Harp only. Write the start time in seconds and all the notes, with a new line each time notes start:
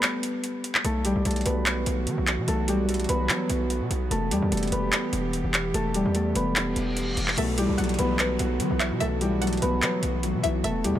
Already playing: G3 A3 B3 G4 A4 B4
0.85 A3 A4
1.05 G3 G4
1.26 A3 A4
1.46 B3 B4
2.48 A3 A4
2.68 G3 G4
2.89 A3 A4
3.09 B3 B4
4.11 A3 A4
4.31 G3 G4
4.52 A3 A4
4.72 B3 B4
5.74 A3 A4
5.95 G3 G4
6.15 A3 A4
6.36 B3 B4
7.38 A3 A4
7.58 G3 G4
7.78 A3 A4
7.99 B3 B4
9.01 A3 A4
9.21 G3 G4
9.42 A3 A4
9.62 B3 B4
10.64 A3 A4
10.85 G3 G4